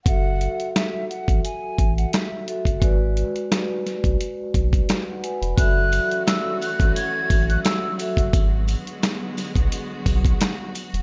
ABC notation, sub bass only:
X:1
M:4/4
L:1/16
Q:"Swing 16ths" 1/4=87
K:F#m
V:1 name="Sub bass" clef=bass
F,,,3 z4 A,,, z2 A,,,2 z3 F,,, | G,,,3 z4 B,,, z2 B,,,2 z3 E,,, | F,,,3 z4 A,,, z2 A,,,2 z3 F,,, | G,,,3 z4 B,,, z2 B,,,2 z3 E,,, |]